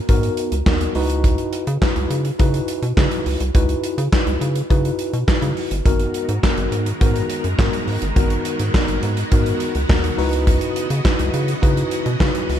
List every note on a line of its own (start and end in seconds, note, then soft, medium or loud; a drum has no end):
0.08 0.30 G#2 loud
0.08 0.53 B3 medium
0.08 0.53 D#4 medium
0.08 0.53 F#4 medium
0.08 0.53 A#4 loud
0.08 kick loud
0.08 closed hi-hat medium
0.23 closed hi-hat medium
0.37 closed hi-hat medium
0.52 0.62 C#2 medium
0.52 closed hi-hat medium
0.66 0.87 D#2 loud
0.66 0.95 B3 medium
0.66 0.94 D#4 medium
0.66 0.95 F#4 medium
0.66 0.95 A#4 medium
0.66 kick loud
0.66 snare loud
0.66 clap medium
0.81 closed hi-hat medium
0.95 1.37 C#2 loud
0.95 1.64 D#4 loud
0.95 1.64 E4 medium
0.95 1.65 F#4 medium
0.95 1.65 B4 loud
0.95 open hi-hat medium
1.10 closed hi-hat medium
1.24 kick loud
1.24 closed hi-hat medium
1.38 closed hi-hat medium
1.53 closed hi-hat medium
1.67 1.78 C#3 loud
1.67 closed hi-hat medium
1.81 2.26 D#4 medium
1.81 2.26 E4 medium
1.81 2.26 F#4 medium
1.81 2.27 B4 medium
1.81 kick loud
1.81 snare loud
1.81 clap medium
1.96 2.06 C#2 loud
1.96 closed hi-hat medium
2.10 2.31 C#3 loud
2.10 closed hi-hat medium
2.25 closed hi-hat medium
2.39 2.60 C#3 loud
2.39 2.84 D#4 loud
2.39 2.84 E4 medium
2.39 2.84 F#4 medium
2.39 2.84 B4 loud
2.39 kick loud
2.39 closed hi-hat medium
2.54 closed hi-hat medium
2.68 closed hi-hat medium
2.82 2.93 B2 medium
2.82 closed hi-hat soft
2.97 3.07 C#3 loud
2.97 3.42 D#4 medium
2.97 3.42 E4 medium
2.97 3.42 F#4 medium
2.97 3.42 B4 loud
2.97 kick loud
2.97 snare loud
2.97 clap loud
3.11 closed hi-hat medium
3.26 3.36 C#2 medium
3.26 open hi-hat medium
3.40 3.51 C2 medium
3.40 closed hi-hat medium
3.55 3.76 C#2 loud
3.55 3.99 D#4 medium
3.55 3.99 E4 medium
3.55 3.99 F#4 medium
3.55 4.00 B4 loud
3.55 kick loud
3.55 closed hi-hat medium
3.69 closed hi-hat medium
3.84 closed hi-hat medium
3.98 4.08 C#3 loud
3.98 closed hi-hat medium
4.12 4.57 D#4 medium
4.12 4.57 E4 medium
4.12 4.57 F#4 medium
4.12 4.57 B4 loud
4.12 kick loud
4.12 snare loud
4.12 clap loud
4.26 4.37 C#2 loud
4.26 closed hi-hat medium
4.41 4.62 C#3 loud
4.41 closed hi-hat medium
4.55 closed hi-hat medium
4.70 4.91 C#3 loud
4.70 5.15 D#4 medium
4.70 5.15 E4 medium
4.70 5.15 F#4 medium
4.70 5.15 B4 loud
4.70 kick loud
4.70 closed hi-hat medium
4.85 closed hi-hat medium
4.99 closed hi-hat medium
5.13 5.24 B2 medium
5.13 closed hi-hat soft
5.28 5.72 D#4 medium
5.28 5.72 E4 medium
5.28 5.73 F#4 medium
5.28 5.73 B4 medium
5.28 kick loud
5.28 snare loud
5.28 clap loud
5.42 5.53 C#3 loud
5.42 closed hi-hat medium
5.57 open hi-hat medium
5.71 5.81 G1 loud
5.71 closed hi-hat medium
5.85 6.06 G#1 loud
5.85 10.14 D#3 medium
5.85 10.14 G#3 medium
5.85 6.30 B3 medium
5.85 12.60 B3 medium
5.85 6.30 D#4 medium
5.85 6.30 F#4 medium
5.85 12.60 F#4 medium
5.85 10.14 A#4 medium
5.85 6.30 A#4 loud
5.85 kick loud
5.85 closed hi-hat loud
6.00 closed hi-hat medium
6.14 closed hi-hat medium
6.29 6.39 G#2 loud
6.29 closed hi-hat medium
6.43 6.88 B3 medium
6.43 6.88 D#4 medium
6.43 6.88 F#4 medium
6.43 6.88 A#4 loud
6.43 kick loud
6.43 snare loud
6.43 clap medium
6.57 6.68 G#1 loud
6.57 closed hi-hat medium
6.72 6.93 G#2 medium
6.72 closed hi-hat medium
6.86 closed hi-hat medium
7.01 7.22 G#2 loud
7.01 7.45 B3 medium
7.01 7.45 D#4 medium
7.01 7.46 F#4 medium
7.01 7.46 A#4 loud
7.01 kick loud
7.01 closed hi-hat medium
7.16 closed hi-hat medium
7.30 closed hi-hat medium
7.44 7.55 F#2 medium
7.44 closed hi-hat soft
7.58 7.69 G#2 loud
7.58 8.03 B3 medium
7.58 8.03 D#4 medium
7.58 8.03 F#4 medium
7.58 8.03 A#4 medium
7.58 kick loud
7.58 snare loud
7.58 clap medium
7.73 closed hi-hat medium
7.87 7.98 G#2 medium
7.87 open hi-hat medium
8.02 8.12 G1 medium
8.02 closed hi-hat medium
8.16 8.37 G#1 loud
8.16 8.61 B3 medium
8.16 8.61 D#4 medium
8.16 8.61 F#4 medium
8.16 8.61 A#4 loud
8.16 kick loud
8.16 closed hi-hat loud
8.30 closed hi-hat medium
8.45 closed hi-hat medium
8.59 8.70 G#2 loud
8.59 closed hi-hat medium
8.74 9.18 B3 medium
8.74 9.19 D#4 medium
8.74 9.19 F#4 medium
8.74 9.19 A#4 loud
8.74 kick loud
8.74 snare loud
8.74 clap medium
8.88 8.99 G#1 loud
8.88 closed hi-hat medium
9.03 9.24 G#2 loud
9.03 closed hi-hat medium
9.17 closed hi-hat medium
9.31 9.53 G#2 loud
9.31 9.76 B3 medium
9.31 9.76 D#4 medium
9.31 9.76 F#4 medium
9.31 9.77 A#4 loud
9.31 kick loud
9.31 closed hi-hat medium
9.46 closed hi-hat medium
9.60 closed hi-hat medium
9.75 9.85 C#2 medium
9.75 closed hi-hat soft
9.89 10.10 D#2 loud
9.89 10.18 B3 medium
9.89 10.17 D#4 medium
9.89 10.17 F#4 medium
9.89 10.18 A#4 medium
9.89 kick loud
9.89 snare loud
9.89 clap loud
10.04 closed hi-hat medium
10.18 10.60 C#2 loud
10.18 12.60 C#3 medium
10.18 12.60 E3 medium
10.18 10.87 D#4 loud
10.18 10.87 E4 medium
10.18 10.88 F#4 medium
10.18 10.88 B4 loud
10.18 12.60 D#5 medium
10.18 open hi-hat medium
10.33 closed hi-hat medium
10.47 kick loud
10.47 closed hi-hat medium
10.61 closed hi-hat medium
10.76 closed hi-hat medium
10.90 11.01 C#3 medium
10.90 closed hi-hat medium
11.04 11.49 D#4 medium
11.04 11.49 E4 medium
11.04 11.49 F#4 medium
11.04 11.50 B4 loud
11.04 kick loud
11.04 snare loud
11.04 clap medium
11.19 11.30 C#2 loud
11.19 closed hi-hat medium
11.34 11.54 C#3 loud
11.34 closed hi-hat medium
11.48 closed hi-hat medium
11.62 11.84 C#3 loud
11.62 12.07 D#4 loud
11.62 12.07 E4 medium
11.62 12.07 F#4 medium
11.62 12.07 B4 loud
11.62 kick loud
11.62 closed hi-hat medium
11.77 closed hi-hat medium
11.91 closed hi-hat medium
12.06 12.16 B2 loud
12.06 closed hi-hat soft
12.20 12.31 C#3 loud
12.20 12.60 D#4 medium
12.20 12.60 E4 medium
12.20 12.60 F#4 medium
12.20 12.60 B4 loud
12.20 kick loud
12.20 snare loud
12.20 clap medium
12.35 closed hi-hat medium
12.49 12.59 C#2 loud
12.49 open hi-hat medium